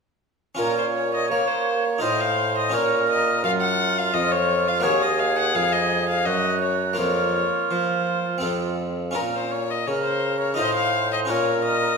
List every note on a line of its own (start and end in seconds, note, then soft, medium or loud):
0.55 1.32 A#2 soft
0.55 1.96 C#4 soft
0.55 1.96 F4 soft
0.55 1.97 A#4 soft
0.55 1.98 C#5 medium
0.59 1.27 A#2 soft
0.59 0.76 A#4 medium
0.78 0.85 C5 medium
0.96 1.13 C#5 medium
1.15 1.30 D#5 medium
1.30 2.04 A#3 soft
1.30 1.98 A#3 soft
1.30 1.49 C#5 medium
1.47 1.87 C5 medium
1.85 2.01 C#5 medium
1.98 2.73 A2 soft
1.98 2.69 D#4 soft
1.98 2.70 F4 soft
1.98 2.71 C5 soft
1.98 2.72 C5 medium
1.98 2.22 D#5 medium
2.03 2.69 A2 soft
2.20 2.56 F5 medium
2.58 2.75 D#5 medium
2.69 4.78 C#4 soft
2.69 4.79 F4 soft
2.69 4.79 A#4 soft
2.73 3.45 A#2 medium
2.73 3.40 A#2 soft
2.73 3.42 A#4 medium
2.73 3.09 C#5 medium
3.09 3.43 D#5 medium
3.43 4.13 F#2 medium
3.43 4.10 F#2 soft
3.43 4.85 F4 medium
3.43 3.51 F5 medium
3.61 4.00 F#5 medium
3.98 4.15 F5 medium
4.14 4.80 F2 soft
4.14 4.83 F2 medium
4.14 4.33 D#5 medium
4.31 4.69 C#5 medium
4.67 4.82 F5 medium
4.80 5.51 A#3 soft
4.80 6.93 F#4 soft
4.80 6.28 G#4 medium
4.80 6.94 A#4 soft
4.80 5.04 C#5 medium
4.84 5.51 D#2 soft
4.84 5.54 D#2 medium
5.02 5.20 D#5 medium
5.19 5.37 F5 medium
5.38 5.57 F#5 medium
5.55 6.27 F2 soft
5.55 6.22 F2 soft
5.55 5.74 F5 medium
5.72 6.08 D#5 medium
6.09 6.27 F5 medium
6.25 6.97 F#2 medium
6.25 6.94 F#2 soft
6.25 6.98 F#4 soft
6.25 6.60 D#5 medium
6.61 6.96 C#5 medium
6.93 8.37 A#3 soft
6.93 8.38 F4 soft
6.93 8.39 A#4 soft
6.93 7.72 C#5 medium
6.98 7.45 F2 soft
6.98 7.42 F2 soft
6.98 8.76 F4 soft
7.71 8.39 F3 soft
7.71 8.45 F3 soft
7.71 8.43 C5 soft
8.38 9.11 C4 soft
8.38 9.11 F4 soft
8.38 9.13 A4 soft
8.43 9.12 F2 soft
8.43 9.15 F2 soft
9.11 10.53 C#4 soft
9.11 10.54 F4 soft
9.11 10.54 A#4 soft
9.11 9.22 A#4 medium
9.15 9.84 A#2 soft
9.15 9.87 A#2 soft
9.35 9.53 C5 medium
9.51 9.72 C#5 medium
9.70 9.89 D#5 medium
9.87 10.58 C#3 soft
9.87 10.55 C#3 soft
9.87 10.56 A#4 soft
9.87 10.03 C#5 medium
10.04 10.40 C5 medium
10.40 10.57 C#5 medium
10.54 11.25 D#4 soft
10.54 11.26 F4 soft
10.54 11.27 C5 soft
10.54 10.74 D#5 medium
10.59 11.26 A2 soft
10.59 11.31 A2 soft
10.59 11.32 C5 medium
10.75 11.11 F5 medium
11.12 11.20 D#5 medium
11.25 11.97 C#4 soft
11.25 11.97 F4 soft
11.25 11.97 A#4 soft
11.25 11.64 C#5 medium
11.30 11.97 A#2 soft
11.30 11.97 A#2 medium
11.30 11.97 A#4 medium
11.64 11.97 D#5 medium